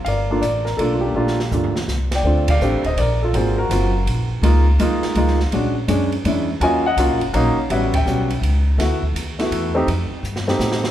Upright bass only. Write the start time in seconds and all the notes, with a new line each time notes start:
0.05 G1
0.42 A1
0.78 B1
1.14 A#1
1.51 D2
1.88 C2
2.23 D2
2.60 A1
2.72 F1
2.84 D1
2.97 A#1
3.33 G#1
3.69 F#1
4.06 A#1
4.42 C#2
4.78 D#2
5.03 muted upright bass stroke
5.15 C#2
5.52 A#1
5.88 F#2
6.24 E2
6.60 D#2
6.96 C2
7.10 A#1
7.21 F#1
7.33 A#1
7.57 muted upright bass stroke
7.70 A1
8.05 B1
8.42 C#2
8.78 D2
9.14 D#2
9.51 E2
9.87 F2
10.11 muted upright bass stroke
10.23 G2
10.59 A2